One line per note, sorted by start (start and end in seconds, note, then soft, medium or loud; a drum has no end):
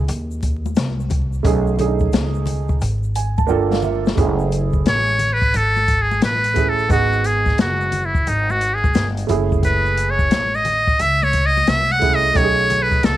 0.08 0.73 D#2 loud
0.08 closed hi-hat medium
0.08 shaker medium
0.31 shaker soft
0.43 kick medium
0.43 closed hi-hat medium
0.43 shaker soft
0.66 high conga medium
0.66 shaker soft
0.75 1.42 C2 medium
0.75 snare loud
0.75 closed hi-hat medium
0.75 shaker medium
1.00 shaker soft
1.10 kick medium
1.10 closed hi-hat medium
1.10 low conga medium
1.10 shaker soft
1.33 shaker soft
1.43 2.09 B1 loud
1.43 1.70 A3 medium
1.43 1.71 C#4 medium
1.43 1.72 D#4 medium
1.43 1.72 G#4 loud
1.43 kick loud
1.43 closed hi-hat medium
1.43 shaker medium
1.67 shaker soft
1.77 2.73 A3 medium
1.77 2.74 C#4 medium
1.77 1.88 D4 medium
1.77 2.75 G#4 medium
1.77 closed hi-hat medium
1.77 high conga medium
1.77 low conga medium
1.77 shaker medium
1.86 2.78 D#4 medium
1.99 kick medium
1.99 shaker soft
2.13 2.78 C#2 medium
2.13 snare loud
2.13 closed hi-hat medium
2.13 high conga soft
2.13 shaker medium
2.34 shaker soft
2.46 closed hi-hat medium
2.46 low conga medium
2.46 shaker medium
2.69 kick loud
2.69 shaker soft
2.81 3.46 G#1 medium
2.81 closed hi-hat medium
2.81 shaker medium
3.03 shaker soft
3.15 3.36 G#5 medium
3.15 closed hi-hat medium
3.15 shaker soft
3.38 3.49 A5 medium
3.38 kick medium
3.38 high conga medium
3.38 shaker soft
3.47 4.14 G1 medium
3.47 4.07 A#3 medium
3.47 4.08 D4 medium
3.47 4.08 F4 medium
3.47 3.70 G5 medium
3.47 shaker medium
3.51 4.09 A4 loud
3.71 3.82 F5 medium
3.71 snare medium
3.71 shaker soft
3.82 4.15 E5 medium
3.82 low conga medium
3.82 shaker soft
4.06 snare medium
4.06 shaker soft
4.16 4.82 F#1 loud
4.16 5.12 A3 medium
4.16 5.13 C#4 medium
4.16 5.14 E4 medium
4.16 5.14 G#4 medium
4.16 kick loud
4.16 closed hi-hat medium
4.16 shaker medium
4.39 shaker soft
4.52 closed hi-hat medium
4.52 shaker soft
4.73 kick medium
4.73 shaker soft
4.86 5.51 A1 medium
4.86 5.35 C#5 loud
4.86 snare loud
4.86 closed hi-hat medium
4.86 high conga soft
4.86 shaker medium
5.08 shaker soft
5.19 closed hi-hat medium
5.19 low conga medium
5.19 shaker soft
5.33 5.58 B4 medium
5.41 kick medium
5.41 shaker soft
5.54 6.19 G#1 loud
5.54 6.03 A4 loud
5.54 closed hi-hat medium
5.54 shaker medium
5.77 high conga medium
5.77 shaker soft
5.88 kick medium
5.88 closed hi-hat medium
5.88 shaker soft
6.02 6.23 G#4 medium
6.11 high conga medium
6.11 shaker soft
6.21 6.87 A1 medium
6.21 6.71 B4 medium
6.21 snare loud
6.21 closed hi-hat medium
6.21 shaker medium
6.44 closed hi-hat medium
6.44 shaker soft
6.54 6.82 A3 medium
6.54 6.82 C#4 medium
6.54 6.83 E4 medium
6.54 6.83 G#4 medium
6.54 kick medium
6.54 closed hi-hat medium
6.54 low conga medium
6.54 shaker soft
6.69 6.91 A4 medium
6.79 shaker soft
6.88 7.55 G#1 loud
6.88 7.85 B3 medium
6.88 7.85 D#4 medium
6.88 7.86 F#4 medium
6.88 7.28 F#4 medium
6.88 kick loud
6.88 closed hi-hat medium
6.88 shaker medium
6.92 7.87 G#4 medium
7.13 shaker soft
7.24 7.59 G#4 medium
7.24 closed hi-hat medium
7.24 shaker soft
7.46 kick medium
7.46 snare soft
7.46 shaker soft
7.58 8.23 F#1 medium
7.58 8.07 F#4 medium
7.58 snare loud
7.58 closed hi-hat medium
7.58 high conga soft
7.58 shaker medium
7.81 shaker soft
7.92 closed hi-hat medium
7.92 low conga medium
7.92 shaker soft
8.06 8.30 E4 medium
8.15 kick medium
8.15 shaker soft
8.27 8.92 G#1 medium
8.27 8.52 D#4 medium
8.27 closed hi-hat medium
8.27 shaker medium
8.50 8.76 F#4 medium
8.50 high conga medium
8.50 shaker soft
8.61 closed hi-hat medium
8.61 shaker soft
8.74 9.07 G#4 medium
8.84 kick loud
8.84 high conga medium
8.84 shaker soft
8.94 9.28 G1 medium
8.94 snare loud
8.94 closed hi-hat medium
8.94 shaker medium
9.17 closed hi-hat medium
9.17 shaker soft
9.27 10.27 F#1 loud
9.27 10.39 A3 medium
9.27 10.40 C#4 medium
9.27 10.40 E4 medium
9.27 10.41 G#4 loud
9.27 closed hi-hat medium
9.27 low conga medium
9.27 shaker soft
9.52 kick medium
9.52 shaker soft
9.63 10.12 B4 medium
9.63 kick loud
9.63 closed hi-hat medium
9.63 shaker medium
9.86 shaker soft
9.97 closed hi-hat medium
9.97 shaker medium
10.10 10.57 C#5 medium
10.19 kick medium
10.19 shaker soft
10.31 10.96 A1 medium
10.31 snare loud
10.31 closed hi-hat medium
10.31 high conga soft
10.31 shaker medium
10.54 11.03 D#5 medium
10.54 shaker soft
10.65 closed hi-hat medium
10.65 low conga medium
10.65 shaker soft
10.87 kick medium
10.87 shaker soft
10.99 11.64 C#2 medium
10.99 11.25 E5 loud
10.99 closed hi-hat medium
10.99 shaker medium
11.23 11.48 C#5 loud
11.23 high conga medium
11.23 shaker soft
11.33 kick medium
11.33 closed hi-hat medium
11.33 shaker soft
11.46 11.71 D#5 loud
11.57 high conga medium
11.57 shaker soft
11.67 12.32 C2 medium
11.67 11.93 E5 loud
11.67 snare loud
11.67 closed hi-hat medium
11.67 shaker medium
11.91 12.16 F#5 loud
11.91 shaker soft
11.99 12.27 A3 medium
11.99 12.28 C#4 medium
11.99 12.28 E4 medium
11.99 12.29 G#4 medium
11.99 kick medium
11.99 closed hi-hat medium
11.99 low conga medium
11.99 shaker soft
12.15 12.38 D#5 loud
12.25 shaker soft
12.33 13.00 B1 loud
12.33 13.17 A3 medium
12.33 13.17 C#4 medium
12.33 13.17 D#4 medium
12.33 12.45 G4 medium
12.33 12.84 C#5 loud
12.33 kick loud
12.33 closed hi-hat medium
12.33 shaker medium
12.44 13.17 G#4 medium
12.58 shaker soft
12.70 closed hi-hat medium
12.70 high conga soft
12.70 low conga medium
12.70 shaker medium
12.82 13.06 B4 medium
12.91 kick medium
12.91 shaker soft
13.03 13.17 C#2 medium
13.03 13.17 A4 medium
13.03 snare loud
13.03 closed hi-hat medium
13.03 high conga soft
13.03 shaker medium